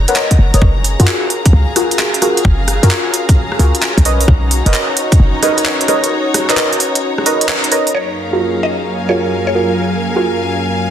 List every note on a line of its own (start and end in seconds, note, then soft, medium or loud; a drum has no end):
0.00 1.24 D#4 medium
0.00 1.70 C#5 medium
0.00 8.80 A#5 medium
0.08 0.14 A#4 loud
0.08 0.14 B4 medium
0.08 0.14 C#5 medium
0.08 0.14 F#5 loud
0.08 closed hi-hat medium
0.16 0.29 A#4 medium
0.16 0.29 B4 medium
0.16 0.29 C#5 medium
0.16 0.29 D#5 medium
0.16 clap loud
0.31 kick medium
0.31 closed hi-hat soft
0.39 0.51 F#1 medium
0.54 0.60 F#1 medium
0.54 0.61 A#4 medium
0.54 0.61 B4 medium
0.54 0.61 C#5 medium
0.54 0.61 D#5 medium
0.54 closed hi-hat medium
0.62 0.96 F#1 loud
0.62 7.91 C#4 medium
0.62 4.02 G#4 medium
0.62 4.94 G#4 medium
0.62 4.02 F5 medium
0.62 kick loud
0.84 open hi-hat medium
1.00 1.06 F#2 medium
1.00 1.74 F4 medium
1.00 1.74 F#4 medium
1.00 1.74 G#4 medium
1.00 1.74 A#4 loud
1.00 closed hi-hat medium
1.07 clap loud
1.12 4.66 F5 medium
1.30 open hi-hat medium
1.46 kick loud
1.46 closed hi-hat medium
1.53 1.66 C#2 medium
1.76 2.20 F4 medium
1.76 2.20 F#4 medium
1.76 2.20 G#4 medium
1.76 2.20 A#4 medium
1.76 cross-stick medium
1.76 open hi-hat loud
1.91 closed hi-hat medium
1.99 clap loud
2.14 closed hi-hat medium
2.22 2.40 F4 medium
2.22 2.40 F#4 medium
2.22 2.40 G#4 medium
2.22 2.40 A#4 loud
2.22 cross-stick medium
2.22 open hi-hat loud
2.37 closed hi-hat medium
2.45 2.79 F#1 loud
2.45 kick loud
2.68 cross-stick medium
2.68 open hi-hat loud
2.83 2.89 F#2 medium
2.83 3.58 F4 medium
2.83 3.58 F#4 medium
2.83 3.58 G#4 medium
2.83 3.58 A#4 loud
2.83 closed hi-hat medium
2.91 clap loud
3.14 open hi-hat loud
3.29 kick loud
3.29 closed hi-hat medium
3.52 cross-stick medium
3.59 3.72 C#2 medium
3.59 4.03 F4 medium
3.59 4.03 F#4 medium
3.59 4.03 G#4 medium
3.59 4.03 A#4 loud
3.59 open hi-hat loud
3.75 closed hi-hat medium
3.82 clap loud
3.98 4.26 B1 medium
3.98 kick medium
3.98 closed hi-hat medium
4.05 7.91 D#4 medium
4.05 9.32 D#4 medium
4.05 7.91 F#4 medium
4.05 4.23 A#4 medium
4.05 4.23 B4 medium
4.05 4.23 C#5 medium
4.05 4.23 D#5 loud
4.05 open hi-hat loud
4.21 open hi-hat medium
4.28 4.62 B1 medium
4.28 kick loud
4.47 9.32 C#5 medium
4.51 open hi-hat loud
4.66 4.72 F#1 medium
4.66 5.41 A#4 medium
4.66 5.41 B4 medium
4.66 5.41 C#5 medium
4.66 5.41 D#5 loud
4.66 closed hi-hat medium
4.74 clap loud
4.97 open hi-hat loud
5.12 kick loud
5.12 closed hi-hat medium
5.20 5.32 F#1 loud
5.43 5.87 A#4 medium
5.43 5.87 B4 medium
5.43 5.87 C#5 medium
5.43 5.87 D#5 medium
5.43 cross-stick medium
5.43 open hi-hat loud
5.58 closed hi-hat medium
5.65 clap loud
5.81 closed hi-hat medium
5.88 6.07 A#4 medium
5.88 6.06 B4 medium
5.88 6.06 C#5 medium
5.88 6.07 D#5 loud
5.88 cross-stick medium
5.88 open hi-hat loud
6.04 closed hi-hat medium
6.34 cross-stick medium
6.34 open hi-hat loud
6.49 7.24 A#4 medium
6.49 7.24 B4 medium
6.49 7.24 C#5 medium
6.49 7.24 D#5 loud
6.49 clap medium
6.49 closed hi-hat medium
6.57 clap loud
6.73 closed hi-hat soft
6.80 open hi-hat loud
6.95 closed hi-hat medium
7.18 cross-stick medium
7.26 7.70 A#4 medium
7.26 7.70 B4 medium
7.26 7.70 C#5 medium
7.26 7.70 D#5 loud
7.26 open hi-hat loud
7.41 closed hi-hat medium
7.49 clap loud
7.64 closed hi-hat medium
7.72 7.90 A#4 medium
7.72 7.90 B4 medium
7.72 7.90 C#5 medium
7.72 7.90 D#5 loud
7.72 open hi-hat loud
7.87 open hi-hat medium
7.94 10.90 F#2 medium
7.94 10.90 F#3 medium
7.94 10.90 A#3 medium
7.94 10.90 C#4 medium
7.94 10.90 G#4 medium
7.94 8.14 C#5 medium
7.94 10.90 F5 medium
7.94 crash medium
8.10 10.90 A#4 medium
8.17 10.90 F5 medium
8.33 9.07 F4 medium
8.33 9.07 F#4 medium
8.33 9.07 G#4 medium
8.33 9.07 A#4 medium
8.63 8.87 D#5 medium
8.93 10.90 G#5 medium
9.09 9.53 F4 medium
9.09 9.53 F#4 medium
9.09 9.53 G#4 medium
9.09 9.53 A#4 medium
9.09 9.28 C#5 medium
9.47 9.63 C#5 medium
9.55 9.73 F4 medium
9.55 9.73 F#4 medium
9.55 9.73 G#4 medium
9.55 9.73 A#4 medium
10.16 10.90 F4 medium
10.16 10.90 F#4 medium
10.16 10.90 G#4 medium
10.16 10.90 A#4 medium